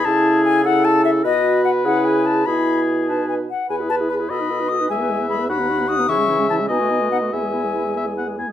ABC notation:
X:1
M:6/8
L:1/16
Q:3/8=99
K:E
V:1 name="Flute"
a4 g2 f2 a2 e2 | d4 f2 f2 g2 a2 | b6 a2 g2 f2 | g2 a2 b2 b4 d'2 |
g4 b2 b4 d'2 | c'4 a2 g4 f2 | g8- g2 z2 |]
V:2 name="Oboe"
G6 A6 | B12 | G8- G z3 | B6 d6 |
e6 f6 | e6 d6 | e6 e2 f2 g2 |]
V:3 name="Clarinet"
A6 A6 | B6 G6 | G6 B4 z2 | B G B G B G A B A B A B |
G B G B G B F D F D F D | E C E C E C D F D F D F | E G E G E G E G E G E G |]
V:4 name="French horn"
E6 E6 | F6 E6 | E6 D4 z2 | G E G E G E F D F D F D |
G, B, G, B, G, B, D B, D B, D B, | E, G, E, G, E, G, B, A, B, A, B, A, | B, G, B, G, B, G, B, G, B, G, B, G, |]
V:5 name="Bassoon" clef=bass
C,12 | B,,6 C,6 | B,,8- B,,2 z2 | E,,6 B,,6 |
E,,6 D,,6 | C,6 B,,6 | E,,8- E,,2 z2 |]